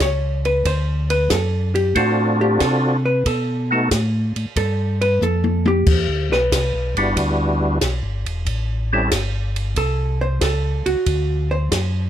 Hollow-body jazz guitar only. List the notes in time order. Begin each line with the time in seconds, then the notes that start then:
0.02 C#5
0.46 B4
0.67 C5
1.10 B4
1.31 A4
1.75 G4
1.97 F#4
2.41 G4
2.61 A4
3.05 B4
3.27 A4
4.57 A4
5.01 B4
5.23 A4
5.68 G4
6.33 B4
9.78 A4
10.21 C5
10.42 A4
10.86 F#4
11.51 C5